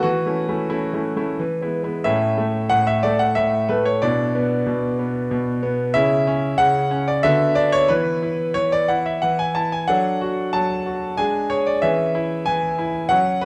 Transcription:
0.03 0.25 E3 medium
0.03 0.70 F#4 loud
0.26 0.46 A3 medium
0.26 0.46 C#4 medium
0.26 0.47 E4 medium
0.49 0.69 A3 medium
0.49 0.69 C#4 medium
0.49 0.68 E4 medium
0.70 0.91 A3 medium
0.70 0.91 C#4 medium
0.70 0.93 E4 medium
0.94 1.14 A3 medium
0.94 1.14 C#4 medium
0.94 1.14 E4 medium
1.17 1.36 A3 medium
1.17 1.36 C#4 medium
1.17 1.37 E4 medium
1.39 1.61 E3 medium
1.61 1.81 G#3 soft
1.61 1.81 B3 soft
1.61 1.82 E4 medium
1.83 2.03 G#3 medium
1.83 2.03 B3 medium
1.83 2.03 E4 medium
2.04 2.69 A2 medium
2.04 3.97 C#4 medium
2.04 3.97 E4 medium
2.04 2.70 E5 loud
2.38 3.02 A3 medium
2.70 3.35 A2 medium
2.70 2.86 F#5 loud
2.87 3.03 E5 loud
3.03 3.68 A3 medium
3.03 3.19 D5 loud
3.19 3.36 F#5 loud
3.35 4.00 A2 medium
3.35 3.68 E5 loud
3.69 4.01 A3 medium
3.69 3.85 B4 medium
3.85 4.02 C#5 medium
4.02 4.65 B2 medium
4.02 5.91 D4 medium
4.02 5.91 E4 medium
4.02 5.63 D5 loud
4.35 4.98 B3 medium
4.67 5.30 B2 medium
4.99 5.61 B3 medium
5.31 5.93 B2 medium
5.63 5.94 B3 medium
5.94 6.57 C#3 medium
5.94 6.26 C#4 medium
5.94 7.19 E4 medium
5.94 6.58 E5 loud
6.27 6.89 C#4 medium
6.58 7.21 C#3 loud
6.58 7.06 F#5 loud
6.91 7.22 C#4 medium
7.08 7.23 D5 loud
7.23 7.87 D3 loud
7.23 7.85 B3 medium
7.23 7.85 F#4 medium
7.23 7.56 E5 loud
7.55 7.88 D4 medium
7.55 7.72 D5 loud
7.72 7.89 C#5 loud
7.88 8.54 E3 medium
7.88 9.84 B3 medium
7.88 8.21 E4 medium
7.88 8.55 B4 loud
8.23 8.88 E4 medium
8.54 9.21 E3 medium
8.54 8.71 C#5 loud
8.72 8.88 D5 loud
8.88 9.54 E4 medium
8.88 9.05 F#5 medium
9.06 9.22 E5 medium
9.22 9.86 E3 medium
9.22 9.38 F#5 medium
9.39 9.55 G#5 loud
9.55 9.87 E4 medium
9.55 9.71 A5 loud
9.72 9.88 G#5 medium
9.88 10.52 F#3 medium
9.88 11.14 D4 medium
9.88 11.14 A4 medium
9.88 10.53 F#5 loud
10.21 10.85 F#4 medium
10.53 11.16 F#3 medium
10.53 11.18 A5 loud
10.86 11.17 F#4 medium
11.17 11.80 G#3 medium
11.17 11.78 D4 medium
11.17 11.49 G#4 medium
11.17 11.50 G#5 loud
11.50 11.81 G#4 medium
11.50 11.66 C#5 medium
11.67 11.82 D5 medium
11.82 12.45 E3 medium
11.82 13.07 C#4 medium
11.82 13.07 G#4 medium
11.82 12.46 E5 loud
12.15 12.77 E4 medium
12.46 13.09 E3 medium
12.46 13.10 G#5 loud
12.79 13.10 E4 medium
13.09 13.45 F#3 medium
13.09 13.45 C#4 medium
13.09 13.41 F#4 medium
13.09 13.42 F#5 loud
13.41 13.45 B4 loud

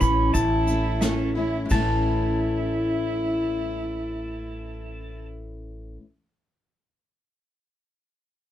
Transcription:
0.00 0.33 A1 medium
0.00 0.67 E3 medium
0.00 0.68 A3 medium
0.00 0.35 C#4 loud
0.00 0.68 C#4 medium
0.00 0.66 E4 medium
0.00 0.33 B5 loud
0.00 kick medium
0.00 shaker medium
0.33 1.67 A1 loud
0.33 1.02 E4 loud
0.33 1.32 A5 medium
0.33 kick medium
0.33 shaker loud
0.67 1.01 A3 soft
0.67 1.02 C#4 medium
0.67 1.01 E4 medium
0.67 shaker medium
1.00 1.35 E3 medium
1.00 1.36 A3 medium
1.00 1.36 C#4 medium
1.00 1.34 E4 medium
1.00 snare loud
1.00 shaker medium
1.35 1.72 A3 medium
1.35 1.71 C#4 medium
1.35 1.70 E4 medium
1.35 1.68 E4 medium
1.65 5.97 A2 medium
1.70 5.96 A1 loud
1.70 6.00 E3 medium
1.70 5.25 E4 medium
1.70 5.26 A5 medium
1.70 kick medium
1.70 crash medium
1.70 shaker medium
1.74 6.01 A3 medium
1.79 6.04 C#4 medium
1.79 6.05 E4 medium

